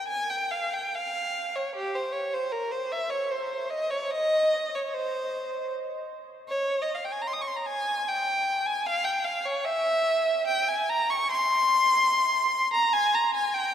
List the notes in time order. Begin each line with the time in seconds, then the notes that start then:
0.08 G#5
0.30 G5
0.51 F5
0.73 G5
0.95 F5
1.56 C#5
1.76 G4
1.95 C5
2.12 C#5
2.34 C5
2.52 A#4
2.72 C5
2.92 E5
3.10 C#5
3.31 C5
3.70 D#5
3.91 C#5
4.11 D#5
4.75 C#5
4.93 C5
6.48 C#5
6.82 D#5
6.95 F5
7.05 G5
7.12 G#5
7.22 A#5
7.27 C6
7.33 D#6
7.41 C#6
7.48 C6
7.56 A#5
7.66 G#5
8.08 G5
8.66 G#5
8.87 F5
9.04 G5
9.24 F5
9.46 C#5
9.65 E5
10.47 G5
10.68 G#5
10.89 A#5
11.11 C#6
11.31 C6
12.73 A#5
12.93 G#5
13.15 A#5
13.34 G#5
13.54 G5